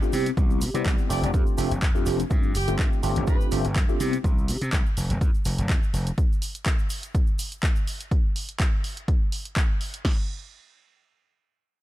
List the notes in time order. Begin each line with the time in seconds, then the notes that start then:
0.01 A3 C4 D4 F4 G4, shaker
0.13 C3 G3 B3 C4 E4 G4, open hi-hat, shaker
0.26 closed hi-hat, shaker
0.37 C2 G3 B3 C4 E4 G4, kick, closed hi-hat, shaker
0.50 shaker
0.61 C3, open hi-hat, shaker
0.74 C3 G3 B3 C4 E4 G4, closed hi-hat, shaker
0.86 C2, kick, clap, closed hi-hat, shaker
0.98 shaker
1.09 F1 A3 C4 D4 F4 G4 D5, open hi-hat, shaker
1.23 F1 D5, closed hi-hat, shaker
1.34 F2 A3 C4 F4 G4, kick, closed hi-hat, shaker
1.47 shaker
1.57 F1 A3 C4 D4 F4 G4, open hi-hat, shaker
1.71 F1, closed hi-hat, shaker
1.82 kick, clap, closed hi-hat, shaker
1.94 A3 C4 D4 F4 G4, shaker
2.06 F1 A3 C4 D4 F4 G4, open hi-hat, shaker
2.19 closed hi-hat, shaker
2.30 G2 A3 C4 D4 F4 G4, kick, closed hi-hat, shaker
2.43 shaker
2.55 G1 G4, open hi-hat, shaker
2.68 G1 A3 C4 D4 F4 G4, closed hi-hat, shaker
2.79 G2, kick, clap, closed hi-hat, shaker
2.93 shaker
3.03 G1 A3 C4 D4 F4 G4, open hi-hat, shaker
3.15 G1, closed hi-hat, shaker
3.27 G2 A3 C4 D4 F4 G4 B4, kick, closed hi-hat, shaker
3.41 shaker
3.51 G1 A3 C4 D4 F4 G4, open hi-hat, shaker
3.65 G1, closed hi-hat, shaker
3.76 G2, kick, clap, closed hi-hat, shaker
3.88 A3 C4 D4 F4 G4, shaker
4.00 C3 G3 B3 C4 E4 G4, open hi-hat, shaker
4.13 closed hi-hat, shaker
4.24 C2, kick, closed hi-hat, shaker
4.38 shaker
4.48 C3, open hi-hat, shaker
4.61 C3, closed hi-hat, shaker
4.73 C2, kick, clap, closed hi-hat, shaker
4.86 shaker
4.97 F1, open hi-hat, shaker
5.10 F1, closed hi-hat, shaker
5.21 F2, kick, closed hi-hat, shaker
5.34 shaker
5.45 F1, open hi-hat, shaker
5.58 F1, closed hi-hat, shaker
5.69 F2, kick, clap, closed hi-hat, shaker
5.83 shaker
5.93 F1, open hi-hat, shaker
6.07 closed hi-hat, shaker
6.18 kick, closed hi-hat, shaker
6.33 shaker
6.42 open hi-hat, shaker
6.55 closed hi-hat, shaker
6.66 kick, clap, closed hi-hat, shaker
6.79 shaker
6.90 open hi-hat, shaker
7.03 closed hi-hat, shaker
7.15 kick, closed hi-hat, shaker
7.27 shaker
7.39 open hi-hat, shaker
7.52 closed hi-hat, shaker
7.63 kick, clap, closed hi-hat, shaker
7.76 shaker
7.87 open hi-hat, shaker
8.00 closed hi-hat, shaker
8.11 kick, closed hi-hat
8.36 open hi-hat
8.49 closed hi-hat
8.60 kick, clap, closed hi-hat
8.84 open hi-hat
8.97 closed hi-hat
9.08 kick, closed hi-hat
9.32 open hi-hat
9.45 closed hi-hat
9.56 kick, clap, closed hi-hat
9.81 open hi-hat
9.94 closed hi-hat
10.05 kick, snare, crash